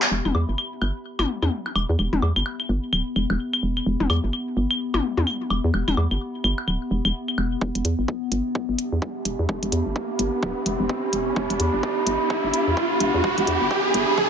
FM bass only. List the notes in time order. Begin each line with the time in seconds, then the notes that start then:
0.11 E1
0.25 E1
0.35 E2
0.49 G1
0.82 G1
1.19 G1
1.43 E2
1.76 E1
1.89 E2
1.99 E1
2.13 E1
2.22 E2
2.36 G1
2.69 G1
2.93 D1
3.16 E1
3.30 E1
3.63 E1
3.86 E1
4.00 E1
4.10 E2
4.24 G1
4.57 G1
4.94 G1
5.18 E2
5.50 E1
5.64 E2
5.74 E1
5.88 E1
5.97 E2
6.11 G1
6.44 G1
6.68 D1
6.91 E1
7.05 E1
7.38 E1
7.61 E1
7.75 E1
7.85 E2
7.99 G1
8.32 G1
8.69 G1
8.92 E2
9.25 E1
9.39 E2
9.49 E1
9.63 E1
9.72 E2
9.86 G1
10.19 G1
10.43 D1
10.66 E1
10.80 E1
11.13 E1
11.36 E1
11.50 E1
11.60 E2
11.74 G1
12.07 G1
12.44 G1
12.67 E2
13.00 E1
13.14 E2
13.24 E1
13.38 E1
13.47 E2
13.61 G1
13.94 G1
14.18 D1